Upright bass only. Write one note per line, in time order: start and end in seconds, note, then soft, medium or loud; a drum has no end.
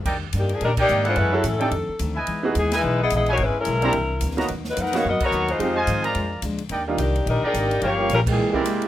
0.05 0.32 D#2 medium
0.33 0.60 G2 medium
0.61 0.88 A#2 medium
0.89 1.16 G#2 medium
1.17 1.43 F#2 medium
1.44 1.71 A2 medium
1.71 1.87 F2 medium
1.89 muted upright bass stroke soft
2.00 2.27 D2 medium
2.28 2.55 E2 medium
2.56 2.82 D#2 medium
2.84 3.10 B1 medium
3.12 3.38 A#1 medium
3.38 3.54 G#1 medium
3.67 3.93 B1 medium
3.94 4.21 C2 medium
4.21 4.48 D2 medium
4.50 4.76 D#2 medium
4.77 5.04 F2 medium
5.05 5.20 F#2 medium
5.21 muted upright bass stroke soft
5.31 5.59 D#2 medium
5.59 5.86 F2 medium
5.87 6.14 G#2 medium
6.15 6.42 F2 medium
6.42 6.69 D2 medium
6.70 6.97 D#2 medium
6.98 7.25 C2 medium
7.26 7.42 A#1 medium
7.43 muted upright bass stroke soft
7.54 7.81 G#1 medium
7.82 8.09 G1 medium
8.10 8.37 A#1 medium